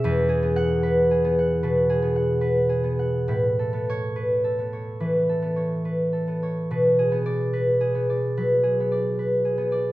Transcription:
<<
  \new Staff \with { instrumentName = "Harp" } { \time 4/4 \key b \dorian \tempo 4 = 73 << { \tuplet 3/2 { r4 fis''8~ } fis''2. | \tuplet 3/2 { r4 cis''8~ } cis''2. | \tuplet 3/2 { r4 d''8~ } d''2. | } \\ { \tuplet 3/2 { <gis' b' e''>8 gis'4 b'8 gis'8 fis''8 b'8 gis'8 fis''8 b'8 gis'8 fis''8 } | \tuplet 3/2 { b'8 a'4 b'8 a'8 cis''8 b'8 a'8 cis''8 b'8 a'8 cis''8 } | \tuplet 3/2 { b'8 gis'4 b'8 gis'8 d''8 b'8 gis'8 d''8 b'8 gis'8 d''8 } | } >> }
  \new Staff \with { instrumentName = "Harp" } { \time 4/4 \key b \dorian <e, b>8 b4 b8 b,8 b4 b8 | a,8 b4 b8 e8 b4 b8 | b,8 b4 b8 fis8 b4 b8 | }
>>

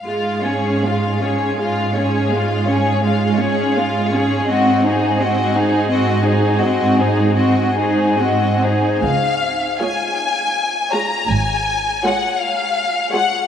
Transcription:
<<
  \new Staff \with { instrumentName = "Violin section" } { \time 12/8 \key des \major \tempo 4. = 54 f''8 des''8 f''8 des''8 f''8 des''8 f''8 des''8 f''8 des''8 f''8 des''8 | ees''8 c''8 ees''8 c''8 ees''8 c''8 ees''8 c''8 ees''8 c''8 ees''8 c''8 | f''4 aes''4. bes''8 aes''4 ges''8 f''4 ges''8 | }
  \new Staff \with { instrumentName = "Violin section" } { \time 12/8 \key des \major f'8 aes'8 f'8 aes'8 f'8 aes'8 f'8 aes'8 f'8 aes'8 f'8 aes'8 | ges'8 aes'8 ges'8 aes'8 ges'8 aes'8 ges'8 aes'8 ges'8 aes'8 ges'8 aes'8 | r4 <aes' des''>8 r4 <aes' des''>8 r4 <aes' des''>8 r4 <aes' des''>8 | }
  \new Staff \with { instrumentName = "Viola section" } { \time 12/8 \key des \major aes8 des'8 aes8 des'8 aes8 des'8 aes8 des'8 aes8 des'8 aes8 des'8 | c'8 ees'8 c'8 ees'8 c'8 ees'8 c'8 ees'8 c'8 ees'8 c'8 ees'8 | r4 <aes f'>8 r4 <aes f'>8 r4 <aes f'>8 r4 <aes f'>8 | }
  \new Staff \with { instrumentName = "Cello section" } { \clef bass \time 12/8 \key des \major aes,1. | aes,1~ aes,4.~ aes,16 r16 | des,4. r4. aes,4. r4. | }
  \new Staff \with { instrumentName = "Double bass section" } { \clef bass \time 12/8 \key des \major r1. | r1. | des,4. r4. aes,,4. r4. | }
>>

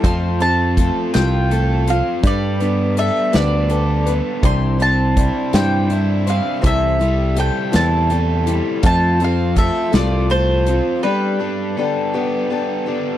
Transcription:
<<
  \new Staff \with { instrumentName = "Mandolin" } { \time 6/8 \key f \lydian \tempo 4. = 55 c'''8 a''4 g''4 f''8 | d''4 e''8 d''4 r8 | c'''8 a''4 g''4 f''8 | e''4 g''8 a''4 r8 |
a''8 f''8 e''8 d''8 c''4 | b'2 r4 | }
  \new Staff \with { instrumentName = "Overdriven electric guitar" } { \time 6/8 \key f \lydian f8 c'8 a'8 f'8 a'8 c'8 | g8 b8 a'8 d'8 a'8 b8 | c8 c'8 e'8 d'8 e'8 c'8 | c8 g8 a'8 e'8 a'8 g8 |
f8 c'8 a'8 f'8 a'8 c'8 | g8 d'8 a'8 b8 a'8 d'8 | }
  \new Staff \with { instrumentName = "Steel-string acoustic guitar" } { \time 6/8 \key f \lydian <f a c' f' a'>8 <c' f' a'>8 <a c' f' a'>8 <f a c' f' a'>8 <a c' f' a'>8 <c' f' a'>8 | <g d' a' b'>8 <d' a' b'>8 <g d' a' b'>8 <g d' a' b'>8 <g d' a' b'>8 <d' a' b'>8 | <c e g d' e' c''>8 <g d' e' c''>8 <g d' e' c''>8 <c e g d' e' c''>8 <g d' e' c''>8 <g d' c''>8 | <c e g c' e' a'>8 <g c' e' a'>8 <g c' e' a'>8 <c e g c' e' a'>8 <g c' e' a'>8 <g c' e' a'>8 |
<f a c' f' a'>8 <c' f' a'>8 <a c' f' a'>8 <f a c' f' a'>8 <a c' f' a'>8 <c' f' a'>8 | <g b d' g' a'>8 <d' g' a'>8 <b d' g' a'>8 <g b d' g' a'>8 <b d' g' a'>8 <d' g' a'>8 | }
  \new Staff \with { instrumentName = "Picked electric bass" } { \clef bass \time 6/8 \key f \lydian f,4. c,4. | g,4. d,4. | c,4. g,4. | c,4. e,4. |
f,4. c,4. | r2. | }
  \new DrumStaff \with { instrumentName = "Drums" } \drummode { \time 6/8 <hh bd>8 hh8 <hh bd>8 <hh sn>8 hh8 hh8 | <hh bd>8 hh8 hh8 <hh sn>8 hh8 hh8 | <hh bd>8 hh8 <hh bd>8 <hh sn>8 hh8 hh8 | <hh bd>8 hh8 hh8 <hh sn>8 hh8 hh8 |
<hh bd>8 hh8 <hh bd>8 <hh sn>8 hh8 hh8 | r4. r4. | }
>>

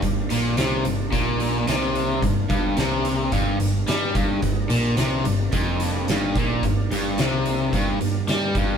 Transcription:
<<
  \new Staff \with { instrumentName = "Tonewheel organ" } { \time 4/4 \key g \minor \tempo 4 = 109 <g bes d'>1 | <d g bes>1 | \tuplet 3/2 { <aes b ees'>8 <g bes d'>4~ } <g bes d'>2. | <g bes d'>1 | }
  \new Staff \with { instrumentName = "Overdriven electric guitar" } { \clef bass \time 4/4 \key g \minor g,8 bes,8 c8 g,8 bes,4 c4 | g,8 g,8 c4 g,8 g,8 g8 g,8 | g,8 bes,8 c8 g,8 f,4 g,8 bes,8 | g,8 g,8 c4 g,8 g,8 g8 g,8 | }
  \new Staff \with { instrumentName = "Picked electric bass" } { \clef bass \time 4/4 \key g \minor g,,8 bes,,8 c,8 g,,8 bes,,4 c,4 | g,,8 g,,8 c,4 g,,8 g,,8 g,8 g,,8 | g,,8 bes,,8 c,8 g,,8 f,,4 g,,8 bes,,8 | g,,8 g,,8 c,4 g,,8 g,,8 g,8 g,,8 | }
  \new DrumStaff \with { instrumentName = "Drums" } \drummode { \time 4/4 <hh bd>8 hh8 <hh sn>8 hh8 <hh bd>8 hh8 <hh sn>8 hh8 | <hh bd>8 <hh bd>8 <hh sn>8 hh8 <hh bd>8 hh8 <hh sn>8 <hh bd>8 | <hh bd>8 hh8 <hh sn>8 hh8 <hh bd>8 hh8 <hh sn>8 <hh bd>8 | <hh bd>8 hh8 <hh sn>8 hh8 <hh bd>8 hh8 <hh sn>8 <hh bd>8 | }
>>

